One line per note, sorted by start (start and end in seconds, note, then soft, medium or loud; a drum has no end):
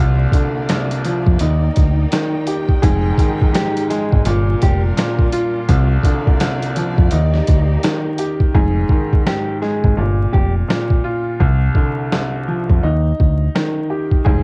0.00 0.25 C2 loud
0.00 0.68 C2 medium
0.00 1.39 C3 medium
0.00 2.80 A#3 medium
0.00 1.39 F4 medium
0.00 2.81 D5 medium
0.32 1.41 D3 medium
0.32 kick loud
0.32 closed hi-hat medium
0.69 1.41 C2 medium
0.69 snare loud
0.69 closed hi-hat loud
0.91 closed hi-hat medium
1.05 1.41 F3 medium
1.05 closed hi-hat medium
1.27 1.38 F2 medium
1.27 kick loud
1.39 1.68 D#2 loud
1.39 2.81 D#4 medium
1.39 2.83 D#4 medium
1.39 4.23 G5 medium
1.39 closed hi-hat medium
1.76 2.05 D2 loud
1.76 kick loud
1.76 closed hi-hat medium
2.12 2.83 D#3 medium
2.12 snare loud
2.12 closed hi-hat medium
2.47 2.83 G4 medium
2.47 closed hi-hat medium
2.69 kick medium
2.82 3.11 F1 loud
2.82 3.54 G#2 loud
2.82 4.25 F3 medium
2.82 4.25 G#3 medium
2.82 4.25 D#4 medium
2.82 3.50 G#4 medium
2.82 kick loud
2.82 closed hi-hat medium
3.18 4.26 D#3 medium
3.18 kick loud
3.18 closed hi-hat medium
3.41 kick loud
3.54 4.27 G#2 medium
3.54 3.86 G4 medium
3.54 snare loud
3.54 closed hi-hat loud
3.77 closed hi-hat medium
3.90 4.26 G#3 medium
3.90 4.22 G#4 medium
3.90 snare soft
3.90 closed hi-hat medium
4.12 4.23 G#1 medium
4.12 kick loud
4.25 4.54 G1 loud
4.25 4.95 A#2 medium
4.25 5.68 G3 medium
4.25 5.68 D4 medium
4.25 7.09 F4 medium
4.25 5.68 A#4 medium
4.25 closed hi-hat medium
4.62 4.90 F1 loud
4.62 4.81 G4 medium
4.62 kick loud
4.62 closed hi-hat medium
4.97 5.69 A#2 medium
4.97 snare loud
4.97 closed hi-hat loud
5.19 kick medium
5.32 5.69 F4 medium
5.32 closed hi-hat medium
5.68 6.40 C2 medium
5.68 5.97 C2 loud
5.68 7.10 C3 medium
5.68 7.08 A#3 medium
5.68 8.52 D5 medium
5.68 kick loud
5.68 closed hi-hat medium
6.03 7.12 D3 medium
6.03 kick medium
6.03 closed hi-hat medium
6.27 kick loud
6.40 7.12 C2 medium
6.40 snare loud
6.40 closed hi-hat loud
6.62 closed hi-hat medium
6.76 7.12 F3 medium
6.76 closed hi-hat medium
6.98 7.09 F2 medium
6.98 kick loud
7.09 7.40 D#2 loud
7.09 8.52 A#3 medium
7.09 8.52 D#4 medium
7.09 8.55 D#4 medium
7.09 8.52 G4 medium
7.09 closed hi-hat medium
7.34 snare soft
7.47 7.76 D2 medium
7.47 kick loud
7.47 closed hi-hat medium
7.83 8.55 D#3 medium
7.83 snare loud
7.83 closed hi-hat medium
8.18 8.55 G4 medium
8.18 closed hi-hat medium
8.40 kick medium
8.54 8.83 F1 loud
8.54 9.25 G#2 loud
8.54 9.22 G#4 medium
8.54 kick loud
8.89 9.98 D#3 medium
8.89 kick loud
9.13 kick loud
9.27 9.98 G#2 medium
9.27 9.59 G4 medium
9.27 snare loud
9.62 9.98 G#3 medium
9.62 9.94 G#4 medium
9.62 snare soft
9.84 9.95 G#1 medium
9.84 kick loud
9.97 10.26 G1 loud
9.97 10.67 A#2 medium
10.33 10.62 F1 loud
10.33 10.52 G4 medium
10.33 kick loud
10.68 11.40 A#2 medium
10.68 snare loud
10.90 kick medium
11.04 11.40 F4 medium
11.40 12.11 C2 medium
11.40 11.68 C2 loud
11.40 kick loud
11.75 12.83 D3 medium
11.75 kick medium
12.12 12.84 C2 medium
12.12 snare loud
12.48 12.83 F3 medium
12.70 12.81 F2 medium
12.70 kick loud
12.83 13.11 D#2 loud
12.83 14.26 D#4 medium
13.20 13.47 D2 loud
13.20 kick loud
13.55 14.26 D#3 medium
13.55 snare loud
13.90 14.26 G4 medium
14.12 kick medium
14.25 14.43 F1 loud
14.25 14.43 G#2 loud
14.25 14.43 G#4 medium
14.25 kick loud